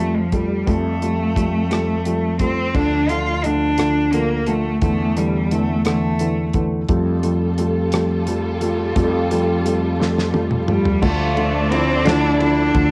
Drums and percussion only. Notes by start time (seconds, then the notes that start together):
0.32 kick, closed hi-hat
0.67 kick, closed hi-hat
1.02 closed hi-hat
1.36 kick, closed hi-hat
1.71 cross-stick, closed hi-hat
2.05 closed hi-hat
2.39 kick, closed hi-hat
2.75 kick, crash
3.09 closed hi-hat
3.44 closed hi-hat
3.78 cross-stick, closed hi-hat
4.13 closed hi-hat
4.47 closed hi-hat
4.82 kick, closed hi-hat
5.17 closed hi-hat
5.51 closed hi-hat
5.85 cross-stick, closed hi-hat
6.19 closed hi-hat
6.53 kick, closed hi-hat
6.88 kick, closed hi-hat
7.23 closed hi-hat
7.58 closed hi-hat
7.92 cross-stick, closed hi-hat
8.27 closed hi-hat
8.61 closed hi-hat
8.96 kick, closed hi-hat
9.31 closed hi-hat
9.66 closed hi-hat
10.01 snare
10.18 snare
10.34 high tom
10.51 mid tom
10.68 mid tom
10.85 floor tom
11.02 kick, crash
11.37 ride
11.72 ride
12.05 snare, ride
12.40 ride
12.74 kick, ride